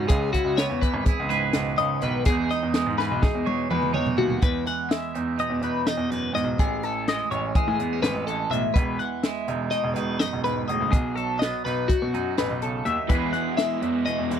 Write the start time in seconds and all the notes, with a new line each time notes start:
Already playing: G#3 B3 E4
0.07 C#2 C#3 G#4, kick, closed hi-hat
0.33 E4 F#4, kick, closed hi-hat
0.44 C#2
0.57 B3 C#5, snare, closed hi-hat
0.69 E2
0.82 E3 B4, kick, closed hi-hat
0.94 G#1
1.05 E4 G#4, kick, closed hi-hat
1.20 C#2
1.29 G#2 G#4 B4, closed hi-hat
1.53 C#2 B2, snare, closed hi-hat
1.77 C#2 C#3 D#5, closed hi-hat
2.02 B1 D#3 B4, closed hi-hat
2.25 E2 E3 G#3 D#4 G#4, kick, closed hi-hat
2.30 G#4
2.51 D#4 D#5, snare, closed hi-hat
2.63 E2
2.74 G#3, snare, closed hi-hat
2.86 G#2
2.98 E3 B4, snare
3.11 B1
3.22 D#4 G#4, kick, snare
3.35 E2
3.45 B2 G#4 C#5, high tom
3.70 E2 G#3 B4, mid tom
3.82 mid tom
3.93 E2 D#4 C#5, mid tom
4.06 floor tom
4.17 D#2 E2 F#4, floor tom
4.30 floor tom
4.41 E2 B4, kick, closed hi-hat
4.67 E3 F#5, snare, closed hi-hat
4.89 G#3 E5, snare, closed hi-hat
5.15 E2 D#4, closed hi-hat
5.38 B2 D#5, closed hi-hat
5.50 E2
5.61 E2 D#4 B4, closed hi-hat
5.86 E2 D#5, snare, closed hi-hat
5.97 E2
6.10 F#2 B4, snare, closed hi-hat
6.33 E2 G#2 D#5, snare, closed hi-hat
6.44 B1
6.59 A1 A2 G#4, kick, closed hi-hat
6.83 E3 A4, snare, closed hi-hat
7.08 G#3 D#5, snare, closed hi-hat
7.31 A1 C#4 C#5, closed hi-hat
7.55 E3 G#4, kick, closed hi-hat
7.68 A2
7.79 E2 B3, closed hi-hat
7.93 C#4
8.02 G#1 G#3 B4, snare, closed hi-hat
8.14 A1
8.27 E3 A4, closed hi-hat
8.50 B1 A2 E5, closed hi-hat
8.74 E1 E2 B4, kick, closed hi-hat
8.99 E3 F#5, closed hi-hat
9.23 G#3 E5, snare, closed hi-hat
9.48 E1 D#4, closed hi-hat
9.71 B2 D#5, snare, closed hi-hat
9.84 E1
9.94 E1 D#4 B4, closed hi-hat
10.19 F#2 D#5, snare, closed hi-hat
10.33 E1
10.44 G#2 B4, snare, closed hi-hat
10.68 E1 A2 D#5, closed hi-hat
10.80 C#2
10.92 B1 B2 G#4, kick, closed hi-hat
11.16 F#3 A4, closed hi-hat
11.39 B3 D#5, snare, closed hi-hat
11.65 B1 D#4 B4, snare, closed hi-hat
11.88 F#2 F#4, kick, closed hi-hat
12.02 B2
12.14 F#2 D#4, closed hi-hat
12.38 A1 B2 B4, snare, closed hi-hat
12.50 B1
12.62 C#3 A4, closed hi-hat
12.85 D#2 D#3 E5, closed hi-hat
13.08 E2 E3 G#3 B3 E4 B4, kick, closed hi-hat
13.12 E2 E3 G#3 G#4
13.33 E3 G#3 B3 E4 F#5, closed hi-hat
13.57 E3 G#3 B3 E4 E5, snare, closed hi-hat
13.82 E2 E3 G#3 B3 E4, closed hi-hat
14.06 B2 E3 G#3 B3 E4 D#5, closed hi-hat
14.18 E2
14.30 E2 G#3 B3 E4 B4, closed hi-hat